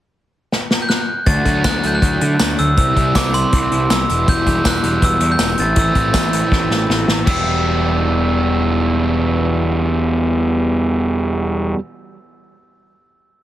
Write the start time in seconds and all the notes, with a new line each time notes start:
0.52 snare
0.71 snare
0.82 G6
0.89 F#6, snare
1.26 D2 D3 A3 D4 F#4 A6, kick, closed hi-hat
1.45 D2 F#3, kick, closed hi-hat
1.64 D2 E4 F#6, kick, snare, closed hi-hat, tambourine
1.83 D2 F#3 G6, closed hi-hat
1.95 F#6
2.02 D2 A3, kick, closed hi-hat
2.21 D3 E4, closed hi-hat
2.39 D2 F#3, snare, closed hi-hat, tambourine
2.58 D2 D3 E6, closed hi-hat
2.77 C2 C3 E3 G3 C4 E4 E6, kick, closed hi-hat
2.96 C2 G3, kick, closed hi-hat
3.15 C2 E4 D6, kick, snare, closed hi-hat, tambourine
3.34 G3 C6, closed hi-hat
3.53 C2 C4, kick, closed hi-hat
3.71 C2 E4, closed hi-hat
3.90 C2 G3 E6, snare, closed hi-hat, tambourine
4.09 E1 E2 B2 E3 G3 B3 E4, closed hi-hat
4.28 E1 E3 G6, kick, closed hi-hat
4.46 E1 G3, kick, closed hi-hat
4.65 E1 E4 F#6, kick, snare, closed hi-hat, tambourine
4.83 E1 G3, closed hi-hat
5.02 E1 B3 E6, kick, closed hi-hat
5.20 E2 E4, closed hi-hat
5.32 G6
5.39 E1 G3, snare, closed hi-hat, tambourine
5.57 A1 A2 E3 A3 C4 E4 A6, closed hi-hat
5.76 A1 A2 E6, kick, closed hi-hat
5.95 A1 C4, kick, closed hi-hat
6.14 A1 B4, kick, snare, closed hi-hat, tambourine
6.33 C4, closed hi-hat
6.51 A1 E4, kick, snare
6.71 A1 B4, snare
6.89 A1 C4, snare
7.08 A1 A3, snare
7.25 E1 E2 B2 E3 G3 B3 E4 E6, kick, crash
7.30 B3 G4